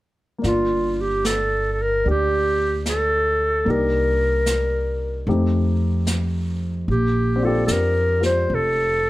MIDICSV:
0, 0, Header, 1, 5, 480
1, 0, Start_track
1, 0, Key_signature, -2, "minor"
1, 0, Tempo, 806452
1, 249, Time_signature, 4, 2, 24, 8
1, 5415, End_track
2, 0, Start_track
2, 0, Title_t, "Clarinet"
2, 0, Program_c, 0, 71
2, 267, Note_on_c, 0, 65, 55
2, 602, Note_on_c, 0, 67, 63
2, 610, Note_off_c, 0, 65, 0
2, 749, Note_on_c, 0, 69, 71
2, 758, Note_off_c, 0, 67, 0
2, 1029, Note_off_c, 0, 69, 0
2, 1029, Note_on_c, 0, 69, 54
2, 1084, Note_on_c, 0, 70, 77
2, 1093, Note_off_c, 0, 69, 0
2, 1230, Note_off_c, 0, 70, 0
2, 1253, Note_on_c, 0, 67, 73
2, 1691, Note_off_c, 0, 67, 0
2, 1722, Note_on_c, 0, 69, 74
2, 2208, Note_on_c, 0, 70, 69
2, 2217, Note_off_c, 0, 69, 0
2, 3148, Note_off_c, 0, 70, 0
2, 4113, Note_on_c, 0, 67, 65
2, 4431, Note_on_c, 0, 69, 59
2, 4440, Note_off_c, 0, 67, 0
2, 4553, Note_off_c, 0, 69, 0
2, 4560, Note_on_c, 0, 69, 60
2, 4594, Note_on_c, 0, 70, 79
2, 4603, Note_off_c, 0, 69, 0
2, 4901, Note_off_c, 0, 70, 0
2, 4912, Note_on_c, 0, 72, 77
2, 5087, Note_on_c, 0, 69, 71
2, 5096, Note_off_c, 0, 72, 0
2, 5415, Note_off_c, 0, 69, 0
2, 5415, End_track
3, 0, Start_track
3, 0, Title_t, "Grand piano"
3, 0, Program_c, 1, 0
3, 229, Note_on_c, 1, 58, 37
3, 250, Note_on_c, 1, 62, 39
3, 269, Note_on_c, 1, 65, 40
3, 376, Control_c, 1, 64, 127
3, 1208, Note_off_c, 1, 62, 0
3, 1217, Note_on_c, 1, 62, 33
3, 1233, Note_on_c, 1, 67, 36
3, 2162, Note_off_c, 1, 58, 0
3, 2171, Note_on_c, 1, 58, 36
3, 2172, Note_off_c, 1, 62, 0
3, 2181, Note_on_c, 1, 62, 33
3, 2182, Control_c, 1, 64, 0
3, 2184, Note_off_c, 1, 65, 0
3, 2184, Note_off_c, 1, 67, 0
3, 2189, Note_on_c, 1, 63, 33
3, 2199, Note_on_c, 1, 67, 41
3, 2298, Control_c, 1, 64, 127
3, 3130, Note_off_c, 1, 58, 0
3, 3135, Note_off_c, 1, 62, 0
3, 3136, Note_off_c, 1, 63, 0
3, 3138, Control_c, 1, 64, 0
3, 3138, Note_on_c, 1, 57, 35
3, 3139, Note_off_c, 1, 67, 0
3, 3145, Note_on_c, 1, 60, 39
3, 3145, Note_on_c, 1, 63, 36
3, 3148, Note_on_c, 1, 67, 47
3, 3241, Control_c, 1, 64, 127
3, 4092, Note_off_c, 1, 57, 0
3, 4096, Note_off_c, 1, 60, 0
3, 4096, Note_off_c, 1, 63, 0
3, 4096, Control_c, 1, 64, 0
3, 4097, Note_off_c, 1, 67, 0
3, 4193, Control_c, 1, 64, 127
3, 4379, Note_on_c, 1, 60, 48
3, 4397, Note_on_c, 1, 62, 40
3, 4421, Note_on_c, 1, 65, 42
3, 4445, Note_on_c, 1, 67, 50
3, 4876, Note_off_c, 1, 65, 0
3, 4882, Note_off_c, 1, 67, 0
3, 4885, Note_on_c, 1, 65, 35
3, 4891, Note_on_c, 1, 67, 31
3, 4896, Note_on_c, 1, 72, 37
3, 5415, Note_off_c, 1, 60, 0
3, 5415, Note_off_c, 1, 62, 0
3, 5415, Note_off_c, 1, 65, 0
3, 5415, Note_off_c, 1, 67, 0
3, 5415, Note_off_c, 1, 72, 0
3, 5415, End_track
4, 0, Start_track
4, 0, Title_t, "Upright bass"
4, 0, Program_c, 2, 32
4, 261, Note_on_c, 2, 31, 66
4, 1196, Note_off_c, 2, 31, 0
4, 1224, Note_on_c, 2, 38, 59
4, 2155, Note_off_c, 2, 38, 0
4, 2179, Note_on_c, 2, 36, 65
4, 3110, Note_off_c, 2, 36, 0
4, 3135, Note_on_c, 2, 41, 69
4, 4067, Note_off_c, 2, 41, 0
4, 4095, Note_on_c, 2, 34, 67
4, 4549, Note_off_c, 2, 34, 0
4, 4572, Note_on_c, 2, 41, 59
4, 5028, Note_off_c, 2, 41, 0
4, 5057, Note_on_c, 2, 29, 62
4, 5415, Note_off_c, 2, 29, 0
4, 5415, End_track
5, 0, Start_track
5, 0, Title_t, "Drums"
5, 259, Note_on_c, 9, 25, 34
5, 259, Note_on_c, 9, 38, 20
5, 318, Note_off_c, 9, 38, 0
5, 741, Note_on_c, 9, 38, 40
5, 741, Note_on_c, 9, 44, 44
5, 801, Note_off_c, 9, 38, 0
5, 801, Note_off_c, 9, 44, 0
5, 1222, Note_off_c, 9, 25, 0
5, 1222, Note_on_c, 9, 25, 24
5, 1700, Note_on_c, 9, 38, 32
5, 1700, Note_on_c, 9, 44, 43
5, 1760, Note_off_c, 9, 38, 0
5, 1760, Note_off_c, 9, 44, 0
5, 2179, Note_off_c, 9, 25, 0
5, 2179, Note_on_c, 9, 25, 27
5, 2655, Note_on_c, 9, 38, 37
5, 2655, Note_on_c, 9, 44, 52
5, 2714, Note_off_c, 9, 38, 0
5, 2714, Note_off_c, 9, 44, 0
5, 3135, Note_off_c, 9, 25, 0
5, 3135, Note_on_c, 9, 25, 34
5, 3611, Note_on_c, 9, 38, 31
5, 3611, Note_on_c, 9, 44, 47
5, 3670, Note_off_c, 9, 38, 0
5, 3670, Note_off_c, 9, 44, 0
5, 4088, Note_off_c, 9, 25, 0
5, 4088, Note_on_c, 9, 25, 25
5, 4570, Note_on_c, 9, 38, 35
5, 4570, Note_on_c, 9, 44, 53
5, 4630, Note_off_c, 9, 38, 0
5, 4630, Note_off_c, 9, 44, 0
5, 4897, Note_on_c, 9, 38, 23
5, 4956, Note_off_c, 9, 38, 0
5, 5054, Note_off_c, 9, 25, 0
5, 5054, Note_on_c, 9, 25, 35
5, 5415, Note_off_c, 9, 25, 0
5, 5415, End_track
0, 0, End_of_file